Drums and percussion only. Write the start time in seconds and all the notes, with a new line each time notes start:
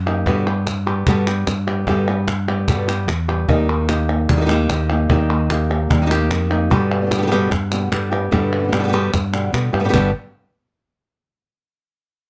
0.07 clap
0.26 cajon bass, cajon slap
0.67 cajon slap, clap
0.87 cajon slap, clap
1.07 cajon bass, clap
1.27 clap
1.47 cajon slap, clap
1.87 cajon bass, cajon slap
2.28 cajon slap, clap
2.48 clap
2.68 cajon bass, clap
2.89 clap
3.08 cajon slap, clap
3.49 cajon bass
3.89 cajon slap, clap
4.09 clap
4.29 cajon bass, clap
4.49 clap
4.69 cajon slap, clap
5.10 cajon bass
5.50 cajon slap, clap
5.90 cajon bass, clap
6.11 clap
6.31 cajon slap, clap
6.71 cajon bass
7.11 cajon slap, clap
7.51 cajon bass, cajon slap, clap
7.72 clap
7.92 cajon slap, clap
8.32 cajon bass, cajon slap
8.72 cajon slap, clap
9.14 cajon bass, cajon slap, clap
9.34 clap
9.54 cajon slap, clap
9.94 cajon bass, clap